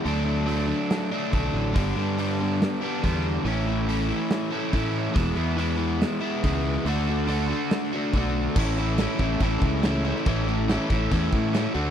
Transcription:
<<
  \new Staff \with { instrumentName = "Overdriven electric guitar" } { \time 4/4 \key a \mixolydian \tempo 4 = 141 <d fis a d'>8 <fis a d'>8 <d fis a d'>8 <fis a d'>4 <fis a d'>8 <d fis a d'>4 | <g, d g b d'>8 <g b d'>8 <g, d g b d'>8 <g b d'>4 <g b d'>8 <d g b d'>4 | <a, e a cis' e'>8 <a cis' e'>8 <a, e a cis' e'>8 <a cis' e'>4 <a cis' e'>8 <e a cis' e'>4 | <e gis b e'>8 <gis b e'>8 <e gis b e'>8 <gis b e'>4 <gis b e'>8 <e gis b e'>4 |
<d a d' fis'>8 <a d' fis'>8 <d a d' fis'>8 <a d' fis'>4 <a d' fis'>8 <d a d' fis'>4 | <a, e a cis' e'>8 <a cis' e'>8 <e a cis' e'>8 <a cis' e'>8 <a, e a cis' e'>4 <e a cis' e'>8 <a cis' e'>8 | <a, e a cis' e'>8 <a cis' e'>8 <e a cis' e'>8 <a cis' e'>8 <a, e a cis' e'>4 <e a cis' e'>8 <d a d' fis'>8 | }
  \new Staff \with { instrumentName = "Fingered electric bass" } { \clef bass \time 4/4 \key a \mixolydian d,2 r4 b,,8 a,,8 | g,,8 g,2 r8 e,4 | a,,2 r4 a,4 | e,,8 e,2 r8 cis,4 |
d,2 r4 b,,4 | a,,4. a,,8 a,,8 cis,4. | a,,4. a,,8 e,8 a,4 d,8 | }
  \new DrumStaff \with { instrumentName = "Drums" } \drummode { \time 4/4 hho4 hho4 <hho sn>4 <hho bd>4 | <hho bd>4 hho4 <hho sn>4 <hho bd>4 | hho4 hho4 <hho sn>4 <hho bd>4 | <hho bd>4 hho4 <hho sn>4 <hho bd>4 |
hho4 hho4 <hho sn>4 <hho bd>4 | <cymc bd>8 cymc8 <cymc sn>8 <cymc bd>8 <cymc bd>8 <cymc bd>8 <cymc sn>8 cymc16 sn16 | <cymc bd>8 cymc8 <cymc sn>8 <cymc bd>8 <cymc bd>8 <cymc bd>8 <cymc sn>8 cymc8 | }
>>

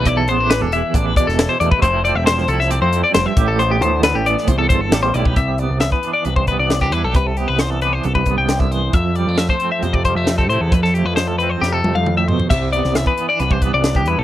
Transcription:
<<
  \new Staff \with { instrumentName = "Clean electric guitar" } { \time 4/4 \key c \major \tempo 4 = 135 d''16 a'16 c''8 b'16 a'16 e''8 d''16 b'16 d''16 a'8 c''16 d''16 b'16 | c''8 d''16 e''16 c''8 a'16 e''16 d''16 c''8 d''16 c''16 e''8 a'16 | c''16 g'16 c''8 b'16 g'16 d''8 c''16 a'16 c''16 a'8 c''16 d''16 b'16 | e''8 d''8 e''16 b'8 d''16 b'16 c''16 b'16 d''8 g'16 b'16 a'16 |
b'16 a'16 g'16 b'16 c''16 a'16 b'16 c''16 a'16 b'8 g''8 e''16 c''8 | e''8 d''8 e''16 c''8 e''16 c''16 d''16 c''16 e''8 a'16 c''16 a'16 | b'16 a'16 g'16 b'16 c''16 a'16 b'16 c''16 g'16 a'8 f''8 e''16 c''8 | e''8 d''8 e''16 b'8 d''16 b'16 c''16 b'16 d''8 g'16 b'16 a'16 | }
  \new Staff \with { instrumentName = "Clean electric guitar" } { \time 4/4 \key c \major << { e'8 b16 d'8. e'8 d'4 e'8 a8 | <f a c' e'>8 c'4 e'8 c'4. g'8 | b4 a'8 b4 a'8 g8 e'16 g'16 | r8 b4 d'4 b8 b16 d'16 e'16 g'16 |
r8 b4 d'4 b4. | r8 g16 a8. c'4 g16 a16 c'8 e'8~ | e'8 a4 c'4 a4. | r8 b4 b16 d'8. b8 d'8 e'16 g'16 | } \\ { e,4 e4. b,4. | r4 f4. f,8 g,8 a,8~ | a,8 e4. e,4. a,8 | c4 e4 g,2 |
c4 e4 g,4 d8 e8 | f,4 f4 c2 | f,4 f4 c4 a,8 b,8 | c4 e4 g,2 | } >> }
  \new Staff \with { instrumentName = "Picked electric bass" } { \clef bass \time 4/4 \key c \major b,,8 a,,8. e,,8 r16 a,,8 r16 e,,8 r16 e,16 r16 | f,,8. e,,8. c,8. f,8 r16 f,,16 r16 a,,8~ | a,,8 d,8. a,,8 r16 c,8 g,,8 a,,8 b,,8 | c,8. c,8 r8. c,8. c,8. e,16 b,,16 |
c,8. c,4~ c,16 c,8 c,16 c,4~ c,16 | f,8. f,8 r8. f,8. f,8. a,16 e,16 | f,8. f,4~ f,16 f,8 f,16 f,4~ f,16 | c,8. c,8 r8. c,8. c,8. e,16 b,,16 | }
  \new DrumStaff \with { instrumentName = "Drums" } \drummode { \time 4/4 <hh bd>8 hh8 <hh sn>8 hh8 <hh bd>8 <hh bd>16 sn16 <hh sn>8 hh16 bd16 | <hh bd>8 hh8 <hh sn>16 sn16 hh16 sn16 hh8 hh8 <hh sn>8 <hh bd>8 | hh8 hh8 <hh sn>8 hh16 sn16 <hh bd>8 <hh bd>8 <hh sn>8 hh16 bd16 | <hh bd>8 hh8 <hh sn>16 bd16 hh8 hh16 bd16 <hh bd>8 <hh sn>16 bd16 hh8 |
<hh bd>8 hh8 <hh sn>8 hh8 hh16 bd16 <hh bd>8 <hh sn>16 bd16 hh8 | <hh bd>8 hh8 <hh sn>16 bd16 hh8 hh16 bd16 <hh bd>8 <hh sn>16 bd16 hh8 | <hh bd>16 sn16 hh8 <hh sn>8 hh8 sn8 tommh16 tommh16 toml8 tomfh16 tomfh16 | <cymc hh bd>8 hh16 sn16 <hh sn>16 bd16 hh8 hh16 bd16 <hh bd>8 <hh sn>16 bd16 hh8 | }
>>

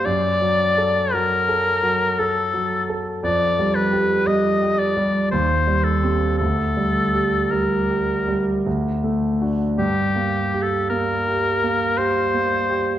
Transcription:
<<
  \new Staff \with { instrumentName = "Oboe" } { \time 3/4 \key g \minor \tempo 4 = 56 d''4 bes'4 a'8. r16 | d''8 b'8 ees''8 d''8 c''8 a'8 | a'4 bes'4 r4 | g'8. a'16 bes'4 c''4 | }
  \new Staff \with { instrumentName = "Grand piano" } { \time 3/4 \key g \minor \tuplet 3/2 { fis,8 fis8 a'8 fis8 a'8 fis8 a'8 fis8 a'8 } | \tuplet 3/2 { f,8 g8 g'8 g8 g'8 g8 ees,8 g8 <c' g'>8 } | \tuplet 3/2 { d,8 g8 g'8 g8 g'8 g8 d,8 a8 <d' fis'>8 } | \tuplet 3/2 { g,8 bes8 g'8 bes8 g'8 bes8 g'8 bes8 g'8 } | }
>>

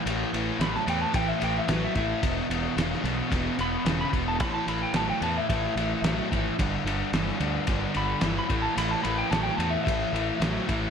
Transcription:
<<
  \new Staff \with { instrumentName = "Electric slide guitar" } { \time 4/4 \key a \major \tempo 4 = 110 r4 b''16 a''16 g''16 a''16 g''16 e''16 g''16 e''16 b'16 e''16 e''8~ | e''8 r2 b''8 r16 b''16 r16 a''16 | b''16 a''16 b''16 g''16 a''16 g''16 a''16 e''16 e''2 | r2 r8 b''8 r16 b''16 r16 a''16 |
b''16 a''16 b''16 g''16 a''16 g''16 a''16 e''16 e''2 | }
  \new Staff \with { instrumentName = "Distorted electric guitar" } { \clef bass \time 4/4 \key a \major <a, e>8 <a, e>8 <a, fis>8 <a, e>8 <a, e>8 <a, e>8 <a, fis>8 <a, e>8 | <e, b,>8 <e, b,>8 <e, cis>8 <e, b,>8 <e, b,>8 <e, b,>8 <e, cis>8 <e, b,>8 | <a, e>8 <a, e>8 <a, fis>8 <a, e>8 <a, e>8 <a, e>8 <a, fis>8 <a, e>8 | <g, d>8 <g, d>8 <g, e>8 <g, d>8 <g, d>8 <g, d>8 <g, e>8 <a, e>8 |
<a, e>8 <a, e>8 <a, fis>8 <a, e>8 <a, e>8 <a, e>8 <a, fis>8 <a, e>8 | }
  \new Staff \with { instrumentName = "Overdriven electric guitar" } { \clef bass \time 4/4 \key a \major <a, e>8 <a, e>8 <a, fis>8 <a, e>8 <a, e>8 <a, e>8 <a, fis>8 <a, e>8 | <e, b,>8 <e, b,>8 <e, cis>8 <e, b,>8 <e, b,>8 <e, b,>8 <e, cis>8 <e, b,>8 | <a, e>8 <a, e>8 <a, fis>8 <a, e>8 <a, e>8 <a, e>8 <a, fis>8 <a, e>8 | <g, d>8 <g, d>8 <g, e>8 <g, d>8 <g, d>8 <g, d>8 <g, e>8 <a, e>8 |
<a, e>8 <a, e>8 <a, fis>8 <a, e>8 <a, e>8 <a, e>8 <a, fis>8 <a, e>8 | }
  \new Staff \with { instrumentName = "Fingered electric bass" } { \clef bass \time 4/4 \key a \major a,,8 a,,8 a,,8 e,8 a,,8 a,,8 a,,8 a,,8 | e,,8 e,,8 e,,8 b,,8 e,,8 e,,8 e,,8 e,,8 | a,,8 a,,8 a,,8 e,8 a,,8 a,,8 a,,8 gis,,8 | g,,8 g,,8 g,,8 d,8 g,,8 g,,8 g,,8 a,,8 |
a,,8 a,,8 a,,8 e,8 a,,8 a,,8 a,,8 a,,8 | }
  \new DrumStaff \with { instrumentName = "Drums" } \drummode { \time 4/4 cymr8 cymr8 <cymr sn>16 sn16 cymr8 <bd cymr>8 cymr8 <cymr sn>8 <bd cymr>8 | <bd cymr>8 cymr8 <cymr sn>16 sn16 cymr8 <bd cymr>8 cymr8 <cymr sn>8 <bd cymr>8 | <bd cymr>8 cymr8 <cymr sn>8 cymr8 <bd cymr>8 cymr8 <cymr sn>8 <bd cymr>8 | <bd cymr>8 cymr8 <cymr sn>16 sn16 cymr8 <bd cymr>8 cymr8 <cymr sn>8 <bd cymr>8 |
cymr8 cymr8 <cymr sn>8 cymr8 <bd cymr>8 cymr8 <cymr sn>8 <bd cymr>8 | }
>>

